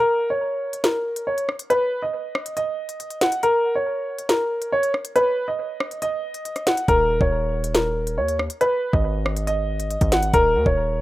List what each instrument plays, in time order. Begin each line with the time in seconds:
Already playing: grand piano A#4
0.30 grand piano C#5
0.73 closed hi-hat
0.84 grand piano A#4, snare, closed hi-hat
1.16 closed hi-hat
1.27 grand piano C#5
1.38 closed hi-hat
1.49 cross-stick
1.59 closed hi-hat
1.70 grand piano B4, closed hi-hat
2.02 grand piano D#5
2.35 cross-stick
2.46 closed hi-hat
2.57 grand piano D#5, closed hi-hat
2.89 closed hi-hat
3.00 closed hi-hat
3.10 closed hi-hat
3.21 grand piano F#5, snare, closed hi-hat
3.32 closed hi-hat
3.43 grand piano A#4, closed hi-hat
3.75 grand piano C#5
4.18 closed hi-hat
4.29 grand piano A#4, snare, closed hi-hat
4.62 closed hi-hat
4.72 grand piano C#5
4.83 closed hi-hat
4.94 cross-stick
5.05 closed hi-hat
5.16 grand piano B4, closed hi-hat
5.48 grand piano D#5
5.80 cross-stick
5.91 closed hi-hat
6.02 grand piano D#5, closed hi-hat
6.34 closed hi-hat
6.45 closed hi-hat
6.56 cross-stick, closed hi-hat
6.67 grand piano F#5, snare, closed hi-hat
6.77 closed hi-hat
6.88 808-style bass D#1, grand piano A#4, kick, closed hi-hat
7.21 808-style bass D#1, grand piano C#5, kick
7.64 closed hi-hat
7.75 grand piano A#4, snare, closed hi-hat
8.07 closed hi-hat
8.18 808-style bass D#2, grand piano C#5
8.28 closed hi-hat
8.39 cross-stick
8.50 closed hi-hat
8.61 grand piano B4, closed hi-hat
8.93 808-style bass G#1, grand piano D#5, kick
9.26 cross-stick
9.36 closed hi-hat
9.47 grand piano D#5, closed hi-hat
9.80 closed hi-hat
9.91 closed hi-hat
10.01 808-style bass G#1, kick, closed hi-hat
10.12 grand piano F#5, snare, closed hi-hat
10.23 closed hi-hat
10.34 808-style bass D#1, grand piano A#4, kick, closed hi-hat
10.55 808-style bass D#2
10.66 808-style bass D#1, grand piano C#5, kick